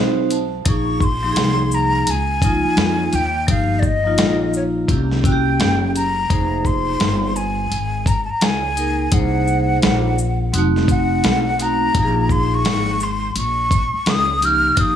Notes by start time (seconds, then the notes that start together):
Already playing: B1 C4 D#4 F#4 C5 F5
0.30 A5, closed hi-hat, shaker
0.65 A#1 F3 A#3 D#4 G#4 C#6, kick, closed hi-hat
1.00 C6, kick, shaker
1.23 F3 A#3 D#4 G4
1.32 G#4
1.36 C2, snare, closed hi-hat
1.72 A#5, shaker
2.07 C#2 G#5, closed hi-hat
2.42 F3 A#3 D#4 F4, kick, closed hi-hat, shaker
2.64 muted upright bass stroke
2.77 F2, snare, closed hi-hat
3.13 D#2 G5, closed hi-hat, shaker
3.47 G1 F3 A#3 D#4 G4 F5, kick, closed hi-hat
3.79 D5, kick, shaker
3.85 D#5
4.04 F3 A#3 D#4 F4
4.18 A#1, snare, closed hi-hat
4.54 C#5, shaker
4.88 C2 A#3 C#4 E4 G4, kick, closed hi-hat
5.11 snare
5.23 A#3 C#4 E4 F#4 G5, kick, closed hi-hat, shaker
5.32 G4
5.60 F#1, snare, closed hi-hat
5.96 A#5, closed hi-hat, shaker
6.29 F1 A#3 D#4 G#4 C5, kick, closed hi-hat
6.65 C6, kick, shaker
7.00 G1, snare, closed hi-hat
7.36 G#5, shaker
7.71 G#1, closed hi-hat
8.06 A#5, kick, closed hi-hat, shaker
8.25 A5
8.29 A#5, muted upright bass stroke
8.41 C#2 G#5, snare, closed hi-hat
8.76 A#3 D#4 G#4 A#4, closed hi-hat, shaker
9.11 C2 A#3 D#4 G#4 C5 F#5, kick, closed hi-hat
9.48 shaker
9.82 A#1, snare, closed hi-hat
10.18 shaker
10.52 F1 F#3 C4 D#4 F#4, closed hi-hat
10.58 A3
10.76 snare
10.88 F#5, kick, closed hi-hat, shaker
11.24 B1, snare, closed hi-hat
11.58 A3 C4 D#4 F#4, closed hi-hat, shaker
11.62 A#5
11.93 A#1 F3 A#3 D#4 G4, kick, closed hi-hat
12.03 G#4
12.29 C6, kick, shaker
12.55 C#6
12.65 G#1, snare, closed hi-hat
13.00 C6, shaker
13.36 A#1 C#6, closed hi-hat
13.71 kick, closed hi-hat, shaker
13.93 muted upright bass stroke
14.06 C#2 D#6, snare, closed hi-hat
14.41 F3 A#3 D#4 G4, closed hi-hat, shaker
14.45 F6
14.76 G1 F3 A#3 D#4 G4, kick, closed hi-hat
14.81 D#6